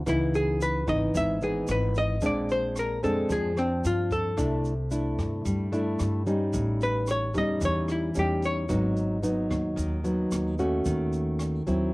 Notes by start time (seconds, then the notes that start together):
0.06 C#2 C#3 E3 B3 D#4 E4, kick, cross-stick, closed hi-hat, shaker
0.34 G#4, closed hi-hat, shaker
0.61 B4, closed hi-hat, shaker
0.87 G#1 E3 B3 D#4 D#5, kick, cross-stick, closed hi-hat, shaker
1.14 G#1 G#2 E5, kick, closed hi-hat, shaker
1.41 E3 B3 D#4 G#4, closed hi-hat, shaker
1.68 G#1 B4, cross-stick, closed hi-hat, shaker
1.95 D#5, closed hi-hat, shaker
2.21 A#1 A#2 G#3 C4 D4, kick, closed hi-hat, shaker
2.26 D5
2.49 C5, closed hi-hat, shaker
2.76 A#4, cross-stick, closed hi-hat, shaker
3.03 F2 G#3 C4 D4 A4, closed hi-hat, shaker
3.29 F2 F3 G#4, kick, closed hi-hat, shaker
3.57 C4 D4, cross-stick, closed hi-hat, shaker
3.84 G2 F4, closed hi-hat, shaker
4.11 A4, kick, closed hi-hat, shaker
4.37 C2 C3 A3 D4 E4, kick, cross-stick, closed hi-hat, shaker
4.65 closed hi-hat, shaker
4.91 A3 D4 E4, closed hi-hat, shaker
5.19 G2, kick, cross-stick, closed hi-hat, shaker
5.45 G2 G3, kick, closed hi-hat, shaker
5.72 A3 D4 E4, closed hi-hat, shaker
5.99 G2, cross-stick, closed hi-hat, shaker
6.26 G3 C#4 D#4, closed hi-hat, shaker
6.53 A1 A2, kick, closed hi-hat, shaker
6.81 B4, closed hi-hat, shaker
7.07 cross-stick, closed hi-hat, shaker
7.11 C#5
7.34 E2 G3 C#4 D#4 D#5, kick, closed hi-hat, shaker
7.61 E2 E3, kick, closed hi-hat, shaker
7.65 C#5
7.88 E4, cross-stick, closed hi-hat, shaker
8.15 E2 G3 C#4 D#4, closed hi-hat, shaker
8.19 G4
8.42 C#5, closed hi-hat, shaker
8.69 G#1 G#2 F#3 B3 D#4, kick, cross-stick, closed hi-hat, shaker
8.97 closed hi-hat, shaker
9.23 F#3 B3 D#4, closed hi-hat, shaker
9.50 D#2, kick, cross-stick, closed hi-hat, shaker
9.76 D#2 D#3, kick, closed hi-hat, shaker
10.04 F#3 B3 D#4, closed hi-hat, shaker
10.32 D#2, cross-stick, closed hi-hat, shaker
10.59 A3 C#4 F#4, closed hi-hat, shaker
10.85 D#2 D#3, kick, closed hi-hat, shaker
11.12 closed hi-hat, shaker
11.39 cross-stick, closed hi-hat, shaker
11.67 D#2 F#3 C4 E4, closed hi-hat, shaker